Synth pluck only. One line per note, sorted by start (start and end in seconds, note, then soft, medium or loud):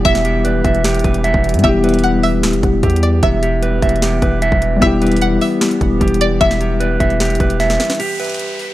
0.05 0.42 E5 loud
1.64 2.01 E5 loud
2.04 2.23 F#5 medium
2.23 2.99 E5 medium
3.03 3.22 D5 medium
3.23 3.60 E5 loud
4.82 5.19 E5 loud
5.22 5.41 F#5 medium
5.42 6.17 E5 medium
6.21 6.40 D5 medium
6.41 6.78 E5 loud